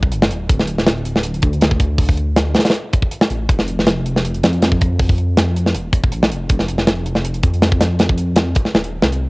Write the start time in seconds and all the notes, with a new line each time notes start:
Already playing: C2
0.03 kick
0.12 G1, closed hi-hat
0.22 snare
0.30 D1, closed hi-hat
0.49 D1, kick, closed hi-hat
0.60 snare
0.67 closed hi-hat
0.79 snare
0.87 snare, closed hi-hat
1.05 closed hi-hat
1.16 snare
1.23 closed hi-hat
1.34 closed hi-hat
1.42 D2, kick, closed hi-hat
1.53 closed hi-hat
1.61 snare, closed hi-hat
1.71 kick
1.80 kick, closed hi-hat
1.98 kick, open hi-hat
2.09 kick
2.18 closed hi-hat
2.37 snare, closed hi-hat
2.55 snare, closed hi-hat
2.59 snare, closed hi-hat
2.65 snare, closed hi-hat
2.70 snare, closed hi-hat
2.74 closed hi-hat
2.93 kick, closed hi-hat
3.03 kick
3.12 closed hi-hat
3.21 snare
3.30 A1, closed hi-hat
3.49 F1, kick, closed hi-hat
3.59 snare
3.68 closed hi-hat
3.79 snare
3.87 snare, closed hi-hat
4.06 closed hi-hat
4.16 snare
4.25 closed hi-hat
4.34 closed hi-hat
4.43 F2, snare, closed hi-hat
4.53 closed hi-hat
4.62 snare, closed hi-hat
4.72 kick
4.81 kick, closed hi-hat
4.99 kick, open hi-hat
5.09 kick
5.18 closed hi-hat
5.37 snare, closed hi-hat
5.56 closed hi-hat
5.66 snare
5.74 D#1, closed hi-hat
5.93 kick, closed hi-hat
6.04 kick
6.12 A#1, closed hi-hat
6.23 snare
6.30 F1, closed hi-hat
6.49 F1, kick, closed hi-hat
6.59 snare
6.68 closed hi-hat
6.78 snare
6.87 snare, closed hi-hat
7.06 closed hi-hat
7.15 snare
7.25 closed hi-hat
7.34 closed hi-hat
7.43 F2, kick, closed hi-hat
7.54 closed hi-hat
7.62 snare, closed hi-hat
7.72 kick
7.81 snare, closed hi-hat
7.99 snare, closed hi-hat
8.09 kick
8.18 closed hi-hat
8.36 snare, closed hi-hat
8.55 kick, closed hi-hat
8.65 snare
8.74 D#1, snare
8.84 closed hi-hat
9.02 C2, snare
9.12 closed hi-hat